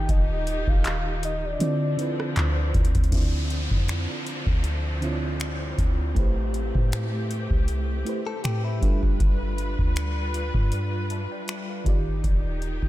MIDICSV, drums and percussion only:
0, 0, Header, 1, 2, 480
1, 0, Start_track
1, 0, Tempo, 759494
1, 54, Time_signature, 4, 2, 24, 8
1, 8143, End_track
2, 0, Start_track
2, 0, Title_t, "Drums"
2, 55, Note_on_c, 9, 36, 115
2, 56, Note_on_c, 9, 42, 63
2, 119, Note_off_c, 9, 36, 0
2, 120, Note_off_c, 9, 42, 0
2, 297, Note_on_c, 9, 42, 70
2, 360, Note_off_c, 9, 42, 0
2, 426, Note_on_c, 9, 36, 98
2, 489, Note_off_c, 9, 36, 0
2, 536, Note_on_c, 9, 42, 67
2, 542, Note_on_c, 9, 39, 125
2, 599, Note_off_c, 9, 42, 0
2, 605, Note_off_c, 9, 39, 0
2, 777, Note_on_c, 9, 42, 90
2, 841, Note_off_c, 9, 42, 0
2, 1014, Note_on_c, 9, 42, 89
2, 1077, Note_off_c, 9, 42, 0
2, 1256, Note_on_c, 9, 42, 71
2, 1320, Note_off_c, 9, 42, 0
2, 1389, Note_on_c, 9, 37, 99
2, 1452, Note_off_c, 9, 37, 0
2, 1493, Note_on_c, 9, 42, 66
2, 1501, Note_on_c, 9, 39, 115
2, 1556, Note_off_c, 9, 42, 0
2, 1564, Note_off_c, 9, 39, 0
2, 1734, Note_on_c, 9, 36, 102
2, 1734, Note_on_c, 9, 42, 59
2, 1797, Note_off_c, 9, 36, 0
2, 1797, Note_off_c, 9, 42, 0
2, 1799, Note_on_c, 9, 42, 59
2, 1863, Note_off_c, 9, 42, 0
2, 1863, Note_on_c, 9, 42, 55
2, 1864, Note_on_c, 9, 36, 96
2, 1919, Note_off_c, 9, 42, 0
2, 1919, Note_on_c, 9, 42, 57
2, 1928, Note_off_c, 9, 36, 0
2, 1972, Note_on_c, 9, 49, 83
2, 1973, Note_off_c, 9, 42, 0
2, 1973, Note_on_c, 9, 42, 60
2, 1974, Note_on_c, 9, 36, 107
2, 2036, Note_off_c, 9, 42, 0
2, 2036, Note_off_c, 9, 49, 0
2, 2037, Note_off_c, 9, 36, 0
2, 2214, Note_on_c, 9, 42, 64
2, 2278, Note_off_c, 9, 42, 0
2, 2344, Note_on_c, 9, 36, 83
2, 2408, Note_off_c, 9, 36, 0
2, 2454, Note_on_c, 9, 42, 66
2, 2461, Note_on_c, 9, 26, 116
2, 2518, Note_off_c, 9, 42, 0
2, 2524, Note_off_c, 9, 26, 0
2, 2695, Note_on_c, 9, 42, 84
2, 2759, Note_off_c, 9, 42, 0
2, 2821, Note_on_c, 9, 36, 87
2, 2885, Note_off_c, 9, 36, 0
2, 2931, Note_on_c, 9, 42, 76
2, 2995, Note_off_c, 9, 42, 0
2, 3174, Note_on_c, 9, 42, 63
2, 3237, Note_off_c, 9, 42, 0
2, 3412, Note_on_c, 9, 42, 58
2, 3419, Note_on_c, 9, 26, 112
2, 3475, Note_off_c, 9, 42, 0
2, 3483, Note_off_c, 9, 26, 0
2, 3654, Note_on_c, 9, 36, 91
2, 3656, Note_on_c, 9, 42, 69
2, 3718, Note_off_c, 9, 36, 0
2, 3720, Note_off_c, 9, 42, 0
2, 3895, Note_on_c, 9, 36, 103
2, 3896, Note_on_c, 9, 42, 59
2, 3958, Note_off_c, 9, 36, 0
2, 3959, Note_off_c, 9, 42, 0
2, 4134, Note_on_c, 9, 42, 62
2, 4197, Note_off_c, 9, 42, 0
2, 4265, Note_on_c, 9, 36, 89
2, 4328, Note_off_c, 9, 36, 0
2, 4375, Note_on_c, 9, 42, 65
2, 4381, Note_on_c, 9, 26, 111
2, 4438, Note_off_c, 9, 42, 0
2, 4444, Note_off_c, 9, 26, 0
2, 4618, Note_on_c, 9, 42, 85
2, 4681, Note_off_c, 9, 42, 0
2, 4743, Note_on_c, 9, 36, 90
2, 4806, Note_off_c, 9, 36, 0
2, 4853, Note_on_c, 9, 42, 73
2, 4917, Note_off_c, 9, 42, 0
2, 5097, Note_on_c, 9, 42, 66
2, 5160, Note_off_c, 9, 42, 0
2, 5334, Note_on_c, 9, 42, 61
2, 5341, Note_on_c, 9, 26, 111
2, 5397, Note_off_c, 9, 42, 0
2, 5405, Note_off_c, 9, 26, 0
2, 5575, Note_on_c, 9, 36, 93
2, 5578, Note_on_c, 9, 42, 67
2, 5639, Note_off_c, 9, 36, 0
2, 5641, Note_off_c, 9, 42, 0
2, 5706, Note_on_c, 9, 36, 87
2, 5769, Note_off_c, 9, 36, 0
2, 5815, Note_on_c, 9, 36, 104
2, 5816, Note_on_c, 9, 42, 60
2, 5878, Note_off_c, 9, 36, 0
2, 5879, Note_off_c, 9, 42, 0
2, 6056, Note_on_c, 9, 42, 62
2, 6119, Note_off_c, 9, 42, 0
2, 6185, Note_on_c, 9, 36, 85
2, 6248, Note_off_c, 9, 36, 0
2, 6294, Note_on_c, 9, 42, 64
2, 6300, Note_on_c, 9, 26, 114
2, 6357, Note_off_c, 9, 42, 0
2, 6363, Note_off_c, 9, 26, 0
2, 6536, Note_on_c, 9, 42, 86
2, 6599, Note_off_c, 9, 42, 0
2, 6662, Note_on_c, 9, 36, 86
2, 6726, Note_off_c, 9, 36, 0
2, 6773, Note_on_c, 9, 42, 77
2, 6837, Note_off_c, 9, 42, 0
2, 7016, Note_on_c, 9, 42, 68
2, 7079, Note_off_c, 9, 42, 0
2, 7254, Note_on_c, 9, 42, 60
2, 7262, Note_on_c, 9, 26, 112
2, 7317, Note_off_c, 9, 42, 0
2, 7325, Note_off_c, 9, 26, 0
2, 7495, Note_on_c, 9, 36, 94
2, 7497, Note_on_c, 9, 42, 71
2, 7558, Note_off_c, 9, 36, 0
2, 7560, Note_off_c, 9, 42, 0
2, 7735, Note_on_c, 9, 36, 103
2, 7736, Note_on_c, 9, 42, 60
2, 7798, Note_off_c, 9, 36, 0
2, 7799, Note_off_c, 9, 42, 0
2, 7975, Note_on_c, 9, 42, 60
2, 8039, Note_off_c, 9, 42, 0
2, 8105, Note_on_c, 9, 36, 91
2, 8143, Note_off_c, 9, 36, 0
2, 8143, End_track
0, 0, End_of_file